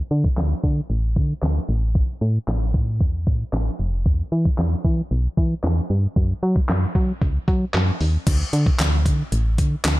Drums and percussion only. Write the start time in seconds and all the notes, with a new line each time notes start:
0.11 closed hi-hat
0.24 kick
0.37 snare, clap, closed hi-hat
0.64 kick, closed hi-hat
0.90 closed hi-hat
1.16 kick, closed hi-hat
1.42 snare, clap, closed hi-hat
1.69 closed hi-hat
1.95 kick, closed hi-hat
2.22 closed hi-hat
2.48 snare, clap, closed hi-hat
2.74 kick, closed hi-hat
3.01 kick, closed hi-hat
3.27 kick, closed hi-hat
3.53 snare, clap, closed hi-hat
3.80 closed hi-hat
4.06 kick, closed hi-hat
4.32 closed hi-hat
4.45 kick
4.58 snare, clap, closed hi-hat
4.85 kick, closed hi-hat
5.11 closed hi-hat
5.37 kick, closed hi-hat
5.64 snare, clap, closed hi-hat
5.90 closed hi-hat
6.16 kick, closed hi-hat
6.43 closed hi-hat
6.56 kick
6.69 snare, clap, closed hi-hat
6.95 kick, closed hi-hat
7.22 kick, closed hi-hat
7.48 kick, closed hi-hat
7.74 snare, clap, closed hi-hat
8.01 open hi-hat
8.27 kick, closed hi-hat, crash
8.53 closed hi-hat
8.66 kick
8.79 snare, clap, closed hi-hat
9.06 kick, closed hi-hat
9.32 closed hi-hat
9.58 kick, closed hi-hat
9.85 snare, clap, closed hi-hat